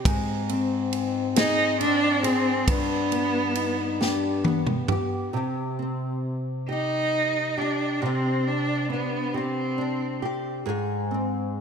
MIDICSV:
0, 0, Header, 1, 5, 480
1, 0, Start_track
1, 0, Key_signature, -3, "minor"
1, 0, Tempo, 874636
1, 31, Time_signature, 6, 3, 24, 8
1, 1951, Tempo, 887574
1, 6306, End_track
2, 0, Start_track
2, 0, Title_t, "French horn section"
2, 0, Program_c, 0, 60
2, 30, Note_on_c, 0, 60, 92
2, 1447, Note_off_c, 0, 60, 0
2, 1464, Note_on_c, 0, 62, 85
2, 1927, Note_off_c, 0, 62, 0
2, 1949, Note_on_c, 0, 63, 77
2, 2186, Note_on_c, 0, 62, 84
2, 2190, Note_off_c, 0, 63, 0
2, 2523, Note_off_c, 0, 62, 0
2, 2666, Note_on_c, 0, 59, 66
2, 2893, Note_off_c, 0, 59, 0
2, 6306, End_track
3, 0, Start_track
3, 0, Title_t, "Nylon-string guitar"
3, 0, Program_c, 1, 24
3, 0, Note_on_c, 1, 60, 52
3, 0, Note_on_c, 1, 67, 64
3, 30, Note_on_c, 1, 44, 77
3, 78, Note_off_c, 1, 67, 0
3, 270, Note_off_c, 1, 60, 0
3, 272, Note_on_c, 1, 60, 50
3, 748, Note_on_c, 1, 68, 62
3, 983, Note_off_c, 1, 60, 0
3, 990, Note_on_c, 1, 60, 53
3, 1218, Note_off_c, 1, 68, 0
3, 1224, Note_on_c, 1, 68, 59
3, 1465, Note_off_c, 1, 44, 0
3, 1467, Note_on_c, 1, 43, 71
3, 1515, Note_off_c, 1, 68, 0
3, 1518, Note_off_c, 1, 60, 0
3, 1710, Note_on_c, 1, 59, 56
3, 2195, Note_on_c, 1, 67, 56
3, 2427, Note_off_c, 1, 59, 0
3, 2433, Note_on_c, 1, 59, 49
3, 2670, Note_off_c, 1, 67, 0
3, 2673, Note_on_c, 1, 67, 59
3, 2910, Note_off_c, 1, 43, 0
3, 2912, Note_on_c, 1, 48, 55
3, 2913, Note_off_c, 1, 67, 0
3, 2915, Note_on_c, 1, 67, 51
3, 2962, Note_off_c, 1, 59, 0
3, 3159, Note_on_c, 1, 60, 38
3, 3637, Note_off_c, 1, 67, 0
3, 3644, Note_on_c, 1, 67, 43
3, 4118, Note_off_c, 1, 67, 0
3, 4125, Note_on_c, 1, 67, 48
3, 4358, Note_off_c, 1, 48, 0
3, 4362, Note_off_c, 1, 67, 0
3, 4364, Note_on_c, 1, 48, 62
3, 4368, Note_on_c, 1, 67, 50
3, 4840, Note_on_c, 1, 62, 42
3, 4856, Note_off_c, 1, 60, 0
3, 5074, Note_off_c, 1, 67, 0
3, 5081, Note_on_c, 1, 67, 48
3, 5311, Note_off_c, 1, 62, 0
3, 5318, Note_on_c, 1, 62, 39
3, 5550, Note_off_c, 1, 67, 0
3, 5557, Note_on_c, 1, 67, 52
3, 5789, Note_off_c, 1, 48, 0
3, 5791, Note_on_c, 1, 44, 62
3, 5794, Note_off_c, 1, 67, 0
3, 5796, Note_on_c, 1, 68, 51
3, 5844, Note_off_c, 1, 62, 0
3, 6037, Note_on_c, 1, 60, 40
3, 6306, Note_off_c, 1, 44, 0
3, 6306, Note_off_c, 1, 60, 0
3, 6306, Note_off_c, 1, 68, 0
3, 6306, End_track
4, 0, Start_track
4, 0, Title_t, "Cello"
4, 0, Program_c, 2, 42
4, 754, Note_on_c, 2, 63, 97
4, 975, Note_off_c, 2, 63, 0
4, 989, Note_on_c, 2, 62, 99
4, 1230, Note_on_c, 2, 60, 83
4, 1238, Note_off_c, 2, 62, 0
4, 1466, Note_on_c, 2, 59, 84
4, 1475, Note_off_c, 2, 60, 0
4, 2430, Note_off_c, 2, 59, 0
4, 3646, Note_on_c, 2, 63, 84
4, 4129, Note_on_c, 2, 62, 68
4, 4137, Note_off_c, 2, 63, 0
4, 4366, Note_on_c, 2, 60, 73
4, 4374, Note_off_c, 2, 62, 0
4, 4610, Note_on_c, 2, 62, 71
4, 4619, Note_off_c, 2, 60, 0
4, 4844, Note_off_c, 2, 62, 0
4, 4847, Note_on_c, 2, 59, 68
4, 5087, Note_on_c, 2, 60, 66
4, 5096, Note_off_c, 2, 59, 0
4, 5621, Note_off_c, 2, 60, 0
4, 6306, End_track
5, 0, Start_track
5, 0, Title_t, "Drums"
5, 29, Note_on_c, 9, 36, 108
5, 31, Note_on_c, 9, 51, 74
5, 84, Note_off_c, 9, 36, 0
5, 86, Note_off_c, 9, 51, 0
5, 271, Note_on_c, 9, 51, 40
5, 326, Note_off_c, 9, 51, 0
5, 508, Note_on_c, 9, 51, 49
5, 563, Note_off_c, 9, 51, 0
5, 748, Note_on_c, 9, 51, 68
5, 754, Note_on_c, 9, 38, 100
5, 803, Note_off_c, 9, 51, 0
5, 809, Note_off_c, 9, 38, 0
5, 991, Note_on_c, 9, 51, 41
5, 1046, Note_off_c, 9, 51, 0
5, 1230, Note_on_c, 9, 51, 56
5, 1285, Note_off_c, 9, 51, 0
5, 1468, Note_on_c, 9, 51, 81
5, 1469, Note_on_c, 9, 36, 113
5, 1523, Note_off_c, 9, 36, 0
5, 1523, Note_off_c, 9, 51, 0
5, 1711, Note_on_c, 9, 51, 44
5, 1766, Note_off_c, 9, 51, 0
5, 1950, Note_on_c, 9, 51, 49
5, 2004, Note_off_c, 9, 51, 0
5, 2200, Note_on_c, 9, 38, 55
5, 2254, Note_off_c, 9, 38, 0
5, 2432, Note_on_c, 9, 48, 76
5, 2486, Note_off_c, 9, 48, 0
5, 2552, Note_on_c, 9, 47, 75
5, 2606, Note_off_c, 9, 47, 0
5, 2670, Note_on_c, 9, 45, 83
5, 2724, Note_off_c, 9, 45, 0
5, 6306, End_track
0, 0, End_of_file